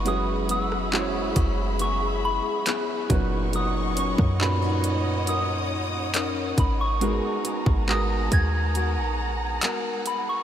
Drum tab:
HH |x-x---x-x---x-x-|x-x---x-x---x-x-|x-x---x-x---x-x-|
CP |----x-------x---|----x-------x---|----x-------x---|
SD |---r------------|---r------------|----------------|
BD |------o-------o-|---o----------o-|---o--o---------|